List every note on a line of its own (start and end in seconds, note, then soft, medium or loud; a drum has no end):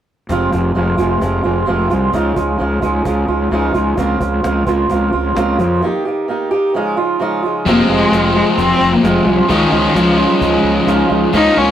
0.29 0.51 F1 medium
0.29 0.75 F2 medium
0.29 0.75 C3 medium
0.29 0.55 F3 medium
0.29 0.54 G#3 medium
0.29 0.52 C4 medium
0.29 0.52 F4 medium
0.29 cajon bass medium
0.52 0.74 F1 medium
0.52 0.74 F3 soft
0.52 0.75 G#3 soft
0.52 0.75 C4 soft
0.52 0.77 F4 medium
0.52 cajon bass medium
0.75 0.97 F1 medium
0.75 0.99 F3 medium
0.75 0.98 G#3 medium
0.75 0.97 C4 medium
0.75 0.97 F4 medium
0.97 1.20 F1 medium
0.97 1.45 F2 soft
0.97 1.45 C3 medium
0.97 1.20 F3 medium
0.97 1.21 G#3 medium
0.97 1.21 C4 medium
0.97 1.23 F4 medium
0.97 cajon bass medium
1.20 1.43 F1 medium
1.20 1.46 F3 medium
1.20 1.44 G#3 medium
1.20 1.43 C4 medium
1.20 1.43 F4 medium
1.20 cajon bass medium
1.43 1.66 F1 medium
1.43 1.67 F3 soft
1.43 1.67 G#3 medium
1.43 1.67 C4 medium
1.43 1.69 F4 medium
1.66 1.89 F1 medium
1.66 2.11 F2 medium
1.66 2.12 C3 medium
1.66 1.92 F3 medium
1.66 1.91 G#3 medium
1.66 1.90 C4 medium
1.66 1.89 F4 medium
1.90 2.12 C2 medium
1.90 2.13 F3 soft
1.90 2.13 G#3 medium
1.90 2.12 C4 medium
1.90 2.15 F4 medium
1.90 cajon bass medium
2.12 2.35 C#2 medium
2.12 2.64 C#3 medium
2.12 2.58 F3 medium
2.12 2.37 G#3 medium
2.12 2.36 D#4 medium
2.12 2.35 F4 medium
2.12 cajon bass medium
2.36 2.58 C#2 medium
2.36 2.58 G#3 soft
2.36 2.59 D#4 soft
2.36 2.61 F4 medium
2.36 cajon bass medium
2.58 2.82 C#2 medium
2.58 2.84 F3 medium
2.58 2.82 G#3 medium
2.58 2.82 D#4 medium
2.58 2.81 F4 medium
2.82 3.04 C#2 medium
2.82 3.30 C#3 medium
2.82 3.04 F3 medium
2.82 3.05 G#3 medium
2.82 3.06 D#4 medium
2.82 3.07 F4 medium
2.82 cajon bass medium
3.05 3.27 C#2 medium
3.05 3.51 F3 medium
3.05 3.29 G#3 medium
3.05 3.28 D#4 medium
3.05 3.27 F4 medium
3.05 cajon bass medium
3.28 3.50 C#2 medium
3.28 3.51 G#3 soft
3.28 3.52 D#4 medium
3.28 3.53 F4 medium
3.51 3.73 C#2 medium
3.51 3.96 C#3 medium
3.51 3.97 F3 medium
3.51 3.76 G#3 medium
3.51 3.75 D#4 medium
3.51 3.73 F4 medium
3.74 3.96 C#2 medium
3.74 3.98 G#3 soft
3.74 3.97 D#4 medium
3.74 3.96 F4 medium
3.74 cajon bass medium
3.97 4.19 C#2 medium
3.97 4.43 C#3 medium
3.97 4.42 F3 medium
3.97 4.22 A#3 medium
3.97 4.21 C4 medium
3.97 4.19 F4 medium
3.97 cajon bass medium
4.20 4.42 C#2 medium
4.20 4.43 A#3 soft
4.20 4.44 C4 medium
4.20 4.45 F4 medium
4.20 cajon bass medium
4.43 4.66 C#2 medium
4.43 4.67 F3 medium
4.43 4.67 A#3 medium
4.43 4.66 C4 medium
4.43 4.65 F4 medium
4.43 cajon slap medium
4.66 4.88 C#2 medium
4.66 5.14 C#3 medium
4.66 4.88 F3 medium
4.66 4.89 A#3 medium
4.66 4.90 C4 medium
4.66 4.91 F4 medium
4.66 cajon bass medium
4.89 5.12 C#2 medium
4.89 5.35 F3 medium
4.89 5.14 A#3 medium
4.89 5.13 C4 medium
4.89 5.11 F4 medium
4.89 cajon bass medium
5.13 5.35 C#2 medium
5.13 5.35 A#3 soft
5.13 5.36 C4 medium
5.13 5.37 F4 medium
5.35 5.58 C#2 medium
5.35 5.80 C#3 medium
5.35 5.81 F3 medium
5.35 5.61 A#3 medium
5.35 5.60 C4 medium
5.35 5.58 F4 medium
5.35 cajon slap medium
5.59 5.80 F2 medium
5.59 5.82 A#3 medium
5.59 5.81 C4 medium
5.59 5.81 F4 medium
5.59 cajon bass medium
5.82 6.27 D#3 medium
5.82 6.07 A#3 medium
5.82 6.06 D#4 medium
5.82 6.04 G4 medium
6.05 6.28 A#3 medium
6.05 6.29 D#4 soft
6.05 6.29 G4 medium
6.28 6.53 D#3 medium
6.28 6.52 A#3 medium
6.28 6.51 D#4 medium
6.28 6.50 G4 medium
6.51 6.74 D#3 medium
6.51 6.73 A#3 medium
6.51 6.73 D#4 medium
6.51 6.72 G4 medium
6.74 7.18 C#3 medium
6.74 7.19 F3 medium
6.74 6.99 G#3 medium
6.74 6.97 D#4 medium
6.74 6.96 F4 medium
6.97 7.20 G#3 soft
6.97 7.20 D#4 soft
6.97 7.21 F4 medium
7.19 7.64 C#3 medium
7.19 7.65 F3 medium
7.19 7.45 G#3 medium
7.19 7.44 D#4 loud
7.19 7.42 F4 medium
7.43 7.66 G#3 medium
7.43 7.65 D#4 medium
7.43 7.64 F4 medium
7.66 7.80 F1 medium
7.66 8.12 F2 medium
7.66 8.12 C3 medium
7.66 7.92 F3 medium
7.66 7.91 G#3 medium
7.66 7.88 A#3 medium
7.66 7.89 C4 medium
7.66 7.89 F4 medium
7.66 cajon bass medium
7.89 8.03 F1 medium
7.89 8.11 F3 soft
7.89 8.32 G#3 loud
7.89 8.12 G#3 soft
7.89 8.12 C4 medium
7.89 8.14 F4 medium
8.11 8.40 F1 medium
8.11 8.36 F3 medium
8.11 8.35 G#3 medium
8.11 8.34 C4 medium
8.11 8.33 F4 medium
8.11 cajon slap loud
8.34 9.04 F3 soft
8.34 8.57 G#3 medium
8.34 9.03 G#3 soft
8.34 9.04 C4 medium
8.34 9.05 F4 medium
8.58 8.72 F1 medium
8.58 8.95 C4 loud
8.58 cajon bass medium
8.80 8.94 F1 medium
8.93 9.05 A#3 medium
9.03 9.18 F1 medium
9.03 9.48 F2 medium
9.03 9.48 C3 medium
9.03 9.28 F3 medium
9.03 9.39 G#3 medium
9.03 9.27 G#3 medium
9.03 9.25 C4 medium
9.03 9.25 F4 medium
9.03 cajon slap medium
9.17 cajon slap soft
9.25 9.40 C2 medium
9.25 9.49 F3 soft
9.25 9.49 G#3 soft
9.25 9.48 C4 medium
9.25 9.51 F4 medium
9.38 9.51 F3 medium
9.48 9.63 C#2 medium
9.48 9.99 C#3 medium
9.48 9.84 D#3 medium
9.48 9.94 F3 medium
9.48 9.73 G#3 medium
9.48 11.33 C#4 medium
9.48 9.72 D#4 medium
9.48 9.71 F4 medium
9.48 cajon bass medium
9.71 9.86 C#2 medium
9.71 9.94 G#3 soft
9.71 9.95 D#4 medium
9.71 9.97 F4 medium
9.85 9.97 D#3 medium
9.95 10.23 C#2 medium
9.95 10.86 F3 medium
9.95 10.29 F3 medium
9.95 10.19 G#3 medium
9.95 10.18 D#4 medium
9.95 10.17 F4 medium
9.95 cajon slap loud
10.17 10.86 G#3 medium
10.17 10.87 D#4 medium
10.17 10.88 F4 medium
10.30 10.35 G3 medium
10.40 10.55 C#2 medium
10.40 11.06 G#3 medium
10.40 cajon bass loud
10.63 10.78 C#2 medium
10.86 11.01 C#2 medium
10.86 11.31 C#3 medium
10.86 11.32 F3 medium
10.86 11.11 G#3 medium
10.86 11.10 D#4 medium
10.86 11.08 F4 loud
10.86 cajon slap medium
11.09 11.25 C#2 medium
11.09 11.33 G#3 medium
11.09 11.32 D#4 medium
11.09 11.32 F4 medium
11.33 11.48 C#2 medium
11.33 11.71 C#3 medium
11.33 11.71 F3 medium
11.33 11.58 A#3 medium
11.33 11.59 D#4 loud
11.33 11.55 F4 loud
11.33 cajon bass loud
11.37 11.71 C#4 medium
11.57 11.71 C#2 medium
11.57 11.71 A#3 soft
11.57 11.71 C#4 medium
11.57 11.71 F4 medium